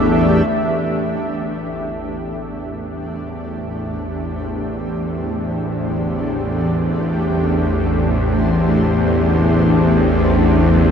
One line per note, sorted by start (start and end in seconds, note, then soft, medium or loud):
0.00 0.49 A1 medium
0.00 0.48 E2 medium
0.00 10.91 A3 medium
0.00 10.91 D4 medium
0.00 10.91 G4 medium
0.00 0.48 B4 medium
0.00 0.50 E5 medium
0.00 10.91 E5 medium
0.50 10.91 A1 medium
0.50 10.91 E2 medium
2.29 10.91 C5 medium